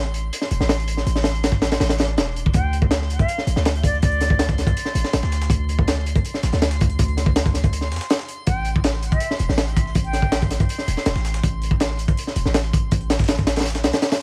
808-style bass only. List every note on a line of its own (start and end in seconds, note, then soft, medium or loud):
0.00 0.31 A1 loud
0.51 0.59 E1 medium
0.60 1.05 A1 medium
1.06 1.79 A1 loud
1.80 2.19 A1 loud
2.17 2.53 E1 medium
2.54 3.27 D2 loud
3.47 3.55 A1 medium
3.56 4.01 D2 medium
4.03 4.75 D2 loud
4.95 5.03 A1 medium
5.13 5.22 A1 medium
5.23 5.49 D2 loud
5.50 6.23 D2 loud
6.43 6.52 A1 loud
6.53 6.98 D2 medium
6.99 7.93 D2 loud
7.91 8.00 F2 medium
8.47 9.20 A1 loud
9.40 9.48 E1 medium
9.49 9.94 A1 medium
9.95 10.68 A1 loud
10.88 10.96 E1 medium
11.06 11.15 E1 medium
11.15 11.42 A1 loud
11.43 12.16 A1 loud
12.36 12.44 E1 medium
12.45 12.90 A1 medium
12.92 13.86 A1 loud
13.84 13.93 C2 loud